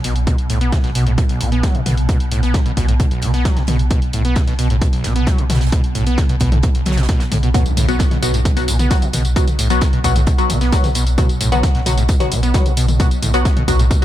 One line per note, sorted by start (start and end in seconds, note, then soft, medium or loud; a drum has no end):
0.00 7.53 B2 medium
0.04 0.15 B1 loud
0.04 0.14 B2 medium
0.04 closed hi-hat medium
0.04 open hi-hat loud
0.16 0.27 B1 medium
0.16 closed hi-hat soft
0.27 0.36 B2 medium
0.27 kick loud
0.27 closed hi-hat medium
0.38 0.49 B1 medium
0.38 closed hi-hat soft
0.50 0.60 B1 loud
0.50 0.59 A2 medium
0.50 closed hi-hat medium
0.50 open hi-hat loud
0.61 0.72 B1 medium
0.61 0.74 B3 medium
0.61 closed hi-hat soft
0.72 0.79 B2 loud
0.72 kick loud
0.72 snare loud
0.72 closed hi-hat medium
0.84 0.95 B1 medium
0.84 0.90 B2 loud
0.84 snare medium
0.84 closed hi-hat soft
0.95 1.06 B1 loud
0.95 1.05 B2 medium
0.95 closed hi-hat medium
0.95 open hi-hat loud
1.06 1.18 B1 medium
1.06 1.13 A2 medium
1.06 closed hi-hat medium
1.18 1.24 B2 medium
1.18 kick loud
1.18 closed hi-hat medium
1.29 1.40 B1 medium
1.29 1.42 B1 medium
1.29 open hi-hat medium
1.41 1.51 B1 medium
1.41 1.50 B2 medium
1.41 closed hi-hat medium
1.41 open hi-hat loud
1.52 1.63 B1 medium
1.52 1.65 B3 medium
1.52 closed hi-hat soft
1.63 1.76 F#3 medium
1.63 kick loud
1.63 snare loud
1.63 closed hi-hat medium
1.75 1.85 B1 medium
1.75 1.81 B2 loud
1.75 closed hi-hat soft
1.86 1.97 B1 medium
1.86 1.96 B2 medium
1.86 closed hi-hat medium
1.86 open hi-hat loud
1.86 mid tom medium
1.97 2.09 B1 medium
1.97 closed hi-hat soft
2.09 2.18 B2 medium
2.09 kick loud
2.09 closed hi-hat medium
2.20 2.31 B1 medium
2.20 closed hi-hat medium
2.32 2.42 B1 loud
2.32 2.41 A2 medium
2.32 closed hi-hat medium
2.32 open hi-hat loud
2.43 2.54 B1 medium
2.43 2.56 B3 medium
2.43 closed hi-hat soft
2.54 2.61 B2 loud
2.54 kick loud
2.54 snare loud
2.54 closed hi-hat medium
2.66 2.76 B1 medium
2.66 2.72 B2 loud
2.66 closed hi-hat soft
2.77 2.88 B1 medium
2.77 2.86 B2 medium
2.77 kick medium
2.77 closed hi-hat medium
2.77 open hi-hat medium
2.88 3.00 B1 medium
2.88 2.95 A2 medium
2.88 closed hi-hat medium
3.00 3.06 B2 medium
3.00 kick loud
3.00 closed hi-hat medium
3.11 3.24 B1 medium
3.11 3.22 B1 medium
3.11 closed hi-hat medium
3.22 3.33 B1 loud
3.22 3.32 B2 medium
3.22 snare soft
3.22 closed hi-hat medium
3.22 open hi-hat loud
3.33 3.45 B1 medium
3.33 3.47 B3 medium
3.33 snare medium
3.33 closed hi-hat medium
3.45 3.58 F#3 medium
3.45 kick loud
3.45 snare loud
3.45 closed hi-hat medium
3.56 3.67 B1 medium
3.56 3.63 B2 loud
3.56 snare soft
3.56 closed hi-hat soft
3.67 3.79 B1 loud
3.67 3.77 B2 medium
3.67 closed hi-hat medium
3.67 open hi-hat medium
3.67 mid tom loud
3.79 3.90 B1 medium
3.79 closed hi-hat soft
3.90 4.00 B2 medium
3.90 kick loud
3.90 closed hi-hat medium
4.02 4.13 B1 medium
4.02 closed hi-hat medium
4.13 4.24 B1 loud
4.13 4.23 A2 medium
4.13 closed hi-hat medium
4.13 open hi-hat medium
4.25 4.36 B1 medium
4.25 4.38 B3 medium
4.25 closed hi-hat medium
4.36 4.42 B2 loud
4.36 kick loud
4.36 snare loud
4.36 closed hi-hat medium
4.47 4.58 B1 medium
4.47 4.54 B2 loud
4.47 snare medium
4.47 closed hi-hat medium
4.59 4.70 B1 loud
4.59 4.68 B2 medium
4.59 closed hi-hat medium
4.59 open hi-hat medium
4.70 4.81 B1 medium
4.70 4.77 A2 medium
4.70 closed hi-hat medium
4.82 4.88 B2 medium
4.82 kick loud
4.82 closed hi-hat medium
4.93 5.04 B1 medium
4.93 5.06 B1 medium
4.93 open hi-hat medium
5.04 5.15 B1 loud
5.04 5.14 B2 medium
5.04 snare loud
5.04 closed hi-hat medium
5.04 open hi-hat loud
5.16 5.27 B1 medium
5.16 5.29 B3 medium
5.16 closed hi-hat medium
5.27 5.40 F#3 medium
5.27 kick loud
5.27 snare loud
5.27 closed hi-hat medium
5.38 5.49 B1 medium
5.38 5.45 B2 loud
5.38 closed hi-hat soft
5.50 5.61 B1 loud
5.50 5.59 B2 medium
5.50 snare medium
5.50 closed hi-hat medium
5.50 open hi-hat loud
5.50 mid tom medium
5.55 snare medium
5.55 closed hi-hat medium
5.60 5.72 B1 medium
5.60 snare medium
5.60 closed hi-hat soft
5.60 closed hi-hat medium
5.67 snare medium
5.67 closed hi-hat medium
5.72 5.82 B2 medium
5.72 kick loud
5.72 closed hi-hat medium
5.72 closed hi-hat loud
5.84 5.95 B1 medium
5.84 closed hi-hat medium
5.95 6.06 B1 loud
5.95 6.05 A2 medium
5.95 closed hi-hat medium
5.95 open hi-hat loud
6.06 6.18 B1 medium
6.06 6.20 B3 medium
6.06 closed hi-hat medium
6.18 6.24 B2 loud
6.18 kick loud
6.18 snare loud
6.18 closed hi-hat medium
6.18 mid tom medium
6.29 6.40 B1 medium
6.29 6.36 B2 loud
6.29 closed hi-hat medium
6.40 6.51 B1 loud
6.40 6.50 B2 medium
6.40 kick medium
6.40 closed hi-hat medium
6.40 open hi-hat loud
6.52 6.63 B1 medium
6.52 6.58 A2 medium
6.52 closed hi-hat medium
6.52 mid tom medium
6.63 6.70 B2 medium
6.63 kick loud
6.63 closed hi-hat medium
6.63 closed hi-hat loud
6.75 6.86 B1 medium
6.75 6.81 B1 medium
6.75 closed hi-hat medium
6.86 6.97 B1 loud
6.86 6.99 F#3 medium
6.86 snare medium
6.86 closed hi-hat medium
6.86 open hi-hat loud
6.86 mid tom medium
6.92 snare medium
6.92 closed hi-hat medium
6.97 7.09 B1 medium
6.97 7.07 B2 loud
6.97 snare medium
6.97 closed hi-hat medium
7.03 snare medium
7.03 closed hi-hat medium
7.09 7.22 B2 loud
7.09 kick loud
7.09 snare loud
7.09 closed hi-hat loud
7.20 7.31 B1 medium
7.20 7.24 A2 medium
7.20 snare medium
7.20 closed hi-hat medium
7.32 7.42 B1 medium
7.32 7.38 A2 loud
7.32 closed hi-hat medium
7.32 open hi-hat loud
7.32 mid tom medium
7.43 7.54 B1 medium
7.43 7.49 B2 medium
7.43 closed hi-hat soft
7.54 14.05 B2 medium
7.54 7.64 B2 medium
7.54 7.66 F#3 medium
7.54 7.66 B3 medium
7.54 7.66 F#4 medium
7.54 kick loud
7.54 closed hi-hat loud
7.54 closed hi-hat medium
7.54 tambourine soft
7.54 impact medium
7.66 7.76 B1 medium
7.66 closed hi-hat medium
7.66 tambourine soft
7.77 7.88 B1 loud
7.77 7.87 A2 medium
7.77 closed hi-hat medium
7.77 open hi-hat loud
7.77 mid tom medium
7.77 tambourine medium
7.88 8.00 B1 medium
7.88 8.00 F#3 medium
7.88 8.00 B3 medium
7.88 8.01 B3 medium
7.88 8.00 F#4 loud
7.88 closed hi-hat medium
7.88 tambourine soft
7.99 8.06 B2 loud
7.99 kick loud
7.99 snare loud
7.99 closed hi-hat medium
7.99 tambourine soft
8.11 8.22 B1 medium
8.11 8.17 B2 loud
8.11 snare soft
8.11 closed hi-hat medium
8.11 mid tom medium
8.23 8.33 B1 loud
8.23 8.32 B2 medium
8.23 8.34 F#3 medium
8.23 8.34 B3 medium
8.23 8.34 F#4 loud
8.23 closed hi-hat medium
8.23 open hi-hat loud
8.23 tambourine medium
8.34 8.45 B1 medium
8.34 8.40 A2 medium
8.34 closed hi-hat medium
8.34 tambourine soft
8.45 8.52 B2 medium
8.45 kick loud
8.45 closed hi-hat medium
8.45 closed hi-hat loud
8.45 mid tom medium
8.45 tambourine soft
8.57 8.67 B1 medium
8.57 8.69 B1 medium
8.57 8.68 F#3 loud
8.57 8.68 B3 medium
8.57 8.68 F#4 loud
8.57 open hi-hat medium
8.57 tambourine soft
8.68 8.79 B1 loud
8.68 8.77 B2 medium
8.68 closed hi-hat medium
8.68 open hi-hat loud
8.68 tambourine medium
8.79 8.90 B1 medium
8.79 8.92 B3 medium
8.79 closed hi-hat medium
8.79 mid tom medium
8.79 tambourine soft
8.90 9.04 F#3 medium
8.90 9.09 F#3 medium
8.90 9.09 B3 medium
8.90 9.09 F#4 loud
8.90 kick loud
8.90 snare loud
8.90 closed hi-hat medium
8.90 tambourine soft
9.02 9.13 B1 medium
9.02 9.08 B2 loud
9.02 closed hi-hat medium
9.02 tambourine soft
9.13 9.24 B1 loud
9.13 9.23 B2 medium
9.13 closed hi-hat medium
9.13 open hi-hat loud
9.13 mid tom medium
9.13 tambourine medium
9.25 9.36 B1 medium
9.25 closed hi-hat soft
9.25 tambourine soft
9.36 9.46 B2 medium
9.36 9.48 F#3 medium
9.36 9.48 B3 medium
9.36 9.48 F#4 medium
9.36 kick loud
9.36 closed hi-hat loud
9.36 tambourine soft
9.47 9.58 B1 medium
9.47 closed hi-hat medium
9.47 mid tom medium
9.47 tambourine soft
9.59 9.70 B1 loud
9.59 9.68 A2 medium
9.59 closed hi-hat medium
9.59 open hi-hat loud
9.59 tambourine medium
9.70 9.81 B1 medium
9.70 9.82 F#3 medium
9.70 9.82 B3 medium
9.70 9.83 B3 medium
9.70 9.82 F#4 loud
9.70 closed hi-hat soft
9.70 closed hi-hat medium
9.70 tambourine soft
9.81 9.88 B2 loud
9.81 kick loud
9.81 snare loud
9.81 closed hi-hat medium
9.81 mid tom medium
9.81 tambourine soft
9.93 10.04 B1 medium
9.93 9.99 B2 loud
9.93 closed hi-hat medium
10.04 10.15 B1 loud
10.04 10.14 B2 medium
10.04 10.16 F#3 medium
10.04 10.16 B3 medium
10.04 10.16 F#4 medium
10.04 kick medium
10.04 closed hi-hat medium
10.04 open hi-hat loud
10.04 tambourine medium
10.16 10.27 B1 medium
10.16 10.22 A2 medium
10.16 closed hi-hat medium
10.16 mid tom medium
10.16 tambourine soft
10.27 10.33 B2 medium
10.27 kick loud
10.27 closed hi-hat medium
10.27 closed hi-hat loud
10.27 tambourine soft
10.38 10.49 B1 medium
10.38 10.51 B1 medium
10.38 10.50 F#3 loud
10.38 10.50 B3 medium
10.38 10.50 F#4 loud
10.38 closed hi-hat medium
10.38 tambourine soft
10.50 10.61 B1 loud
10.50 10.59 B2 medium
10.50 snare soft
10.50 closed hi-hat medium
10.50 open hi-hat loud
10.50 mid tom medium
10.50 tambourine medium
10.61 10.72 B1 medium
10.61 10.74 B3 medium
10.61 snare medium
10.61 closed hi-hat medium
10.61 tambourine soft
10.72 10.91 F#3 medium
10.72 10.85 F#3 medium
10.72 10.91 B3 medium
10.72 10.91 F#4 medium
10.72 kick loud
10.72 snare loud
10.72 closed hi-hat loud
10.72 closed hi-hat medium
10.72 tambourine soft
10.83 10.95 B1 medium
10.83 10.90 B2 loud
10.83 snare medium
10.83 closed hi-hat medium
10.83 mid tom medium
10.83 tambourine soft
10.95 11.06 B1 loud
10.95 11.05 B2 medium
10.95 closed hi-hat medium
10.95 open hi-hat loud
10.95 tambourine medium
11.07 11.18 B1 medium
11.07 closed hi-hat soft
11.07 tambourine soft
11.18 11.27 B2 medium
11.18 11.30 F#3 medium
11.18 11.30 B3 medium
11.18 11.30 F#4 medium
11.18 kick loud
11.18 closed hi-hat loud
11.18 closed hi-hat medium
11.18 mid tom medium
11.18 tambourine soft
11.29 11.40 B1 medium
11.29 closed hi-hat medium
11.29 tambourine soft
11.41 11.51 B1 loud
11.41 11.50 A2 medium
11.41 closed hi-hat medium
11.41 open hi-hat loud
11.41 tambourine medium
11.52 11.63 B1 medium
11.52 11.64 F#3 medium
11.52 11.64 B3 medium
11.52 11.65 B3 medium
11.52 11.64 F#4 loud
11.52 closed hi-hat medium
11.52 mid tom medium
11.52 tambourine soft
11.63 11.70 B2 loud
11.63 kick loud
11.63 snare loud
11.63 closed hi-hat medium
11.63 tambourine soft
11.75 11.85 B1 medium
11.75 11.81 B2 loud
11.75 snare medium
11.75 closed hi-hat medium
11.86 11.97 B1 loud
11.86 11.96 B2 medium
11.86 11.98 F#3 medium
11.86 11.98 B3 medium
11.86 11.98 F#4 loud
11.86 closed hi-hat medium
11.86 open hi-hat loud
11.86 mid tom medium
11.86 tambourine medium
11.98 12.09 B1 medium
11.98 12.04 A2 medium
11.98 closed hi-hat medium
11.98 tambourine soft
12.08 12.15 B2 medium
12.08 kick loud
12.08 closed hi-hat medium
12.08 closed hi-hat loud
12.08 tambourine soft
12.20 12.33 B1 medium
12.20 12.31 B1 medium
12.20 12.32 F#3 loud
12.20 12.32 B3 medium
12.20 12.32 F#4 loud
12.20 open hi-hat medium
12.20 mid tom medium
12.20 tambourine soft
12.32 12.42 B1 medium
12.32 12.41 B2 medium
12.32 closed hi-hat medium
12.32 open hi-hat loud
12.32 tambourine medium
12.43 12.54 B1 medium
12.43 12.56 B3 medium
12.43 closed hi-hat medium
12.43 tambourine soft
12.54 12.67 F#3 medium
12.54 12.73 F#3 medium
12.54 12.73 B3 medium
12.54 12.73 F#4 medium
12.54 kick loud
12.54 snare loud
12.54 closed hi-hat medium
12.54 closed hi-hat loud
12.54 mid tom medium
12.54 tambourine soft
12.66 12.77 B1 medium
12.66 12.72 B2 loud
12.66 closed hi-hat medium
12.66 tambourine soft
12.77 12.88 B1 loud
12.77 12.86 B2 medium
12.77 closed hi-hat medium
12.77 open hi-hat loud
12.77 tambourine medium
12.88 13.00 B1 medium
12.88 closed hi-hat soft
12.88 mid tom medium
12.88 tambourine soft
13.00 13.09 B2 medium
13.00 13.12 F#3 medium
13.00 13.12 B3 medium
13.00 13.12 F#4 medium
13.00 kick loud
13.00 closed hi-hat medium
13.00 tambourine soft
13.11 13.22 B1 medium
13.11 closed hi-hat medium
13.11 tambourine soft
13.22 13.33 B1 loud
13.22 13.32 A2 medium
13.22 closed hi-hat medium
13.22 open hi-hat loud
13.22 mid tom medium
13.22 tambourine medium
13.34 13.45 B1 medium
13.34 13.46 F#3 medium
13.34 13.46 B3 medium
13.34 13.47 B3 medium
13.34 13.46 F#4 loud
13.34 closed hi-hat soft
13.34 closed hi-hat medium
13.34 tambourine soft
13.45 13.51 B2 loud
13.45 kick loud
13.45 snare loud
13.45 closed hi-hat medium
13.45 tambourine soft
13.57 13.67 B1 medium
13.57 13.63 B2 loud
13.57 closed hi-hat medium
13.57 mid tom medium
13.68 13.79 B1 loud
13.68 13.77 B2 medium
13.68 13.80 F#3 medium
13.68 13.80 B3 medium
13.68 13.80 F#4 loud
13.68 kick medium
13.68 closed hi-hat medium
13.68 open hi-hat loud
13.68 tambourine medium
13.79 13.90 B1 medium
13.79 13.86 A2 medium
13.79 closed hi-hat medium
13.79 tambourine soft
13.91 13.97 B2 medium
13.91 kick loud
13.91 closed hi-hat medium
13.91 mid tom medium
13.91 tambourine soft